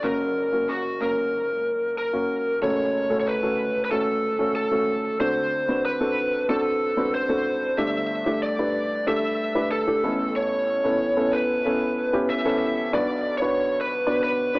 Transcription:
0.03 felt piano F#1 F#2 A#3 C#4 F#4 A#4, lead electric guitar A#4
0.52 felt piano A#3 C#4 F#4 A#4
0.69 lead electric guitar F#4
1.00 felt piano A#3 C#4 F#4 A#4, lead electric guitar A#4
1.98 lead electric guitar A#4
2.13 felt piano A#3 C#4 F#4 A#4
2.62 felt piano F#1 F#2 A3 C#4 F#4 A4, lead electric guitar C#5
3.10 felt piano A3 C#4 F#4 A4
3.20 lead electric guitar C#5
3.28 lead electric guitar B4
3.43 felt piano A3 C#4 F#4 A4
3.85 lead electric guitar B4
3.91 felt piano A3 C#4 F#4 A4, lead electric guitar A4
4.39 felt piano A3 C#4 F#4 A4
4.55 lead electric guitar A4
4.71 felt piano A3 C#4 F#4 A4
5.20 felt piano D2 D3 C4 D4 F#4 A4, lead electric guitar C5
5.68 felt piano C4 D4 F#4 B4
5.85 lead electric guitar B4
6.00 felt piano C4 D4 F#4 A4
6.49 felt piano C4 D4 F#4 A4, lead electric guitar A4
6.97 felt piano C4 D4 F#4 B4
7.15 lead electric guitar C5
7.29 felt piano C4 D4 F#4 A4
7.78 felt piano G1 G2 A3 D4 G4 A4, lead electric guitar E5
8.26 felt piano A3 D4 G4 A4
8.43 lead electric guitar D5
8.58 felt piano A3 D4 G4 B4
9.06 felt piano A3 D4 G4 A4, lead electric guitar E5
9.55 felt piano A3 D4 G4 B4
9.72 lead electric guitar A4
9.87 felt piano A3 D4 G4 A4
10.03 felt piano A1 A2 B3 C#4 E4 A4
10.36 lead electric guitar C#5
10.84 felt piano B3 C#4 E4 A4
11.16 felt piano B3 C#4 E4 A4
11.33 lead electric guitar B4
11.65 felt piano B3 C#4 E4 A4
12.13 felt piano B3 C#4 E4 G4
12.30 lead electric guitar E5
12.45 felt piano B3 C#4 E4 A4
12.93 felt piano B1 B2 B3 D4 F#4 B4 D5, lead electric guitar D5
13.38 felt piano B3 D4 F#4 B4 C#5, lead electric guitar C#5
13.81 lead electric guitar B4
14.07 felt piano B3 D4 F#4 B4 D5
14.23 lead electric guitar B4
14.55 felt piano B3 D4 F#4 B4 D5

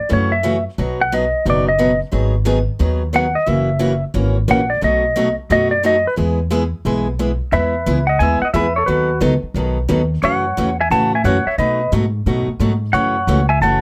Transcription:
Already playing: electric slide guitar D5
0.09 upright bass F#2, steel-string acoustic guitar C#3 E3 A3 C#4 F#4
0.13 electric slide guitar C#5
0.32 electric slide guitar E5
0.43 steel-string acoustic guitar C#3 E3 A3 C#4 F#4
0.78 upright bass B1, steel-string acoustic guitar B2 F#3 B3 D#4 F#4
1.01 electric slide guitar F#5
1.12 steel-string acoustic guitar B2 F#3 B3 D#4 F#4, electric slide guitar D#5
1.46 upright bass F#1, steel-string acoustic guitar B2 F#3 B3 D#4 F#4
1.50 electric slide guitar D5
1.69 electric slide guitar D#5
1.79 steel-string acoustic guitar B2 F#3 B3 D#4 F#4
2.12 upright bass G#1, steel-string acoustic guitar D#3 F#3 B3 D#4 G#4
2.45 steel-string acoustic guitar D#3 F#3 B3 D#4 G#4
2.79 upright bass D#2, steel-string acoustic guitar D#3 F#3 B3 D#4 G#4
3.13 steel-string acoustic guitar D#3 F#3 B3 D#4 G#4, electric slide guitar F#5
3.35 electric slide guitar D#5
3.46 upright bass F#1, steel-string acoustic guitar C#3 E3 A#3 C#4 F#4, electric slide guitar E5
3.79 steel-string acoustic guitar C#3 E3 A#3 C#4 F#4
4.14 upright bass G#1, steel-string acoustic guitar C#3 E3 A#3 C#4 F#4
4.48 upright bass A#1, steel-string acoustic guitar C#3 E3 A#3 C#4 F#4, electric slide guitar F#5
4.70 electric slide guitar D5
4.81 upright bass B1, steel-string acoustic guitar B2 F#3 A3 D#4 F#4, electric slide guitar D#5
5.16 steel-string acoustic guitar B2 F#3 A3 D#4 F#4
5.50 upright bass F#2, steel-string acoustic guitar B2 F#3 A3 D#4 F#4, electric slide guitar D#5
5.71 electric slide guitar D5
5.83 steel-string acoustic guitar B2 F#3 A3 D#4 F#4, electric slide guitar D#5
6.07 electric slide guitar B4
6.16 upright bass E2, steel-string acoustic guitar E3 G#3 B3 E4 G#4
6.50 steel-string acoustic guitar E3 G#3 B3 E4 G#4
6.85 upright bass B1, steel-string acoustic guitar E3 G#3 B3 E4 G#4
7.19 steel-string acoustic guitar E3 G#3 B3 E4 G#4
7.52 upright bass E2, steel-string acoustic guitar E3 G#3 B3 E4 G#4, electric slide guitar B4 E5
7.86 upright bass C#2, steel-string acoustic guitar E3 G#3 B3 E4 G#4
8.07 electric slide guitar D#5 F#5
8.19 upright bass D#2, steel-string acoustic guitar E3 G#3 B3 E4 G#4, electric slide guitar E5 G#5
8.42 electric slide guitar D#5 F#5, muted upright bass stroke
8.54 upright bass E2, steel-string acoustic guitar E3 G#3 B3 E4 G#4, electric slide guitar B4 E5
8.76 electric slide guitar A4 C#5
8.86 upright bass D#2, steel-string acoustic guitar D#3 F#3 B3 D#4 A4, electric slide guitar F#4 B4
9.20 upright bass C#2, steel-string acoustic guitar D#3 F#3 B3 D#4 A4
9.42 muted upright bass stroke
9.54 upright bass B1, steel-string acoustic guitar D#3 F#3 B3 D#4 A4
9.88 upright bass D#2, steel-string acoustic guitar D#3 F#3 B3 D#4 A4
10.22 upright bass F#2, steel-string acoustic guitar C#3 E3 A3 C#4 F#4, electric slide guitar C#5 F#5
10.57 upright bass E2, steel-string acoustic guitar C#3 E3 A3 C#4 F#4
10.80 electric slide guitar E5 G#5
10.91 upright bass A2, steel-string acoustic guitar C#3 E3 A3 C#4 F#4, electric slide guitar F#5 A5
11.15 electric slide guitar E5 G#5
11.24 upright bass F#2, steel-string acoustic guitar C#3 E3 A3 C#4 F#4, electric slide guitar C#5 F#5
11.46 electric slide guitar C#5 E5, muted upright bass stroke
11.58 upright bass B2, steel-string acoustic guitar B2 F#3 A3 D#4 F#4, electric slide guitar B4 D#5
11.92 upright bass G#2, steel-string acoustic guitar B2 F#3 A3 D#4 F#4
12.26 upright bass A2, steel-string acoustic guitar B2 F#3 A3 D#4 F#4
12.47 muted upright bass stroke
12.59 upright bass G#2, steel-string acoustic guitar B2 F#3 A3 D#4 F#4
12.93 upright bass F#2, steel-string acoustic guitar C#3 E3 A3 C#4 F#4, electric slide guitar C#5 F#5
13.27 upright bass C#2, steel-string acoustic guitar C#3 E3 A3 C#4 F#4
13.49 electric slide guitar E5 G#5
13.61 upright bass F#1, steel-string acoustic guitar C#3 E3 A3 C#4 F#4, electric slide guitar F#5 A5

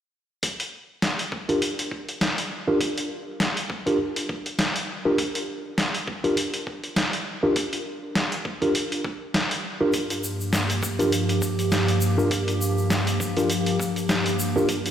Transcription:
0.43 kick, closed hi-hat
0.60 closed hi-hat
1.02 snare, closed hi-hat
1.19 closed hi-hat
1.32 kick
1.49 tine electric piano D4 F4 G4 A#4, closed hi-hat
1.62 closed hi-hat
1.79 closed hi-hat
1.91 kick
2.09 closed hi-hat
2.21 snare, closed hi-hat
2.38 closed hi-hat
2.68 tine electric piano D4 F4 G4 A#4
2.81 kick, closed hi-hat
2.98 closed hi-hat
3.40 snare, closed hi-hat
3.57 closed hi-hat
3.70 kick
3.86 tine electric piano D4 F4 G4 A#4, closed hi-hat
4.16 closed hi-hat
4.29 kick
4.46 closed hi-hat
4.59 snare, closed hi-hat
4.76 closed hi-hat
5.05 tine electric piano D4 F4 G4 A#4
5.18 kick, closed hi-hat
5.35 closed hi-hat
5.78 snare, closed hi-hat
5.95 closed hi-hat
6.08 kick
6.24 tine electric piano D4 F4 G4 A#4, closed hi-hat
6.37 closed hi-hat
6.54 closed hi-hat
6.67 kick
6.84 closed hi-hat
6.96 snare, closed hi-hat
7.13 closed hi-hat
7.43 tine electric piano D4 F4 G4 A#4
7.56 kick, closed hi-hat
7.73 closed hi-hat
8.15 snare, closed hi-hat
8.32 closed hi-hat
8.45 kick
8.62 tine electric piano D4 F4 G4 A#4, closed hi-hat
8.75 closed hi-hat
8.92 closed hi-hat
9.05 kick
9.34 snare, closed hi-hat
9.51 closed hi-hat
9.81 tine electric piano D4 F4 G4 A#4
9.93 ambient pad G2 F3 A#3 G4, kick, closed hi-hat, shaker
10.10 closed hi-hat, shaker
10.24 shaker
10.41 shaker
10.53 snare, closed hi-hat, shaker
10.70 closed hi-hat, shaker
10.83 kick, shaker
10.99 tine electric piano D4 F4 G4 A#4, closed hi-hat, shaker
11.12 closed hi-hat, shaker
11.29 closed hi-hat, shaker
11.42 kick, shaker
11.59 closed hi-hat, shaker
11.72 snare, closed hi-hat, shaker
11.88 closed hi-hat, shaker
12.01 shaker
12.18 tine electric piano D4 F4 G4 A#4, shaker
12.31 kick, closed hi-hat, shaker
12.48 closed hi-hat, shaker
12.61 shaker
12.78 shaker
12.90 snare, closed hi-hat, shaker
13.07 closed hi-hat, shaker
13.20 kick, shaker
13.37 tine electric piano D4 F4 G4 A#4, closed hi-hat, shaker
13.50 closed hi-hat, shaker
13.66 closed hi-hat, shaker
13.80 kick, shaker
13.96 closed hi-hat, shaker
14.09 snare, closed hi-hat, shaker
14.26 closed hi-hat, shaker
14.39 shaker
14.56 tine electric piano D4 F4 G4 A#4, shaker
14.69 kick, closed hi-hat, shaker
14.86 closed hi-hat, shaker

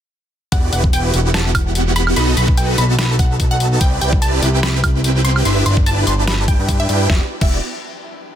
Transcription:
0.52 analog synth bass E1, supersaw synth B3 E4 F#4 G4 D5, synth pluck F#5, kick, closed hi-hat
0.73 analog synth bass E1, supersaw synth B3 E4 F#4 G4 B4, synth pluck F#5, closed hi-hat
0.84 kick
0.93 synth pluck G5, closed hi-hat
1.14 analog synth bass E1, supersaw synth B3 E4 F#4 G4 F#5, closed hi-hat
1.34 synth pluck A5, snare, closed hi-hat
1.55 kick, closed hi-hat, high woodblock
1.75 closed hi-hat
1.96 synth pluck B5, closed hi-hat
2.07 high woodblock
2.16 analog synth bass B1, supersaw synth B3 D#4 F#4 A4 D#5, synth pluck B5, closed hi-hat
2.37 analog synth bass B1, supersaw synth B3 D#4 F#4 A4 B4, synth pluck B5, closed hi-hat
2.48 kick
2.57 synth pluck G5, closed hi-hat
2.78 analog synth bass B1, supersaw synth B3 D#4 F#4 A4 A5, synth pluck B5, closed hi-hat
2.99 synth pluck B5, snare, closed hi-hat
3.19 synth pluck F#5, kick, closed hi-hat
3.40 kick, closed hi-hat
3.51 synth pluck F#5
3.60 closed hi-hat
3.81 analog synth bass C2, supersaw synth C4 E4 G4 B4 D5, synth pluck G5, kick, closed hi-hat
4.01 analog synth bass C2, supersaw synth C4 E4 G4 B4 D5, synth pluck G5, closed hi-hat
4.13 kick
4.22 synth pluck A5, closed hi-hat
4.42 analog synth bass C2, supersaw synth C4 E4 G4 B4 G5, closed hi-hat
4.63 synth pluck B5, snare, closed hi-hat
4.84 kick, closed hi-hat, high woodblock
5.04 closed hi-hat
5.25 synth pluck C6, closed hi-hat
5.36 high woodblock
5.45 analog synth bass G1, supersaw synth D4 E4 G4 B4 E5, synth pluck C6, closed hi-hat
5.66 analog synth bass G1, supersaw synth D4 E4 G4 B4 D5, synth pluck C6, closed hi-hat
5.77 kick
5.86 synth pluck A5, closed hi-hat
6.07 analog synth bass G1, supersaw synth D4 E4 G4 B4 A5, synth pluck C6, closed hi-hat
6.27 synth pluck B5, snare, closed hi-hat
6.48 synth pluck G5, kick, closed hi-hat
6.59 analog synth bass G2, supersaw synth D4 E4 G4 B4 G5
6.69 kick, closed hi-hat
6.80 synth pluck E5
6.89 analog synth bass G2, supersaw synth D4 E4 G4 B4 G5, closed hi-hat
7.10 analog synth bass E1, supersaw synth B3, synth pluck E5, kick, snare
7.41 analog synth bass E1, supersaw synth B3 E4 F#4 G4 D5, synth pluck E5, kick, crash

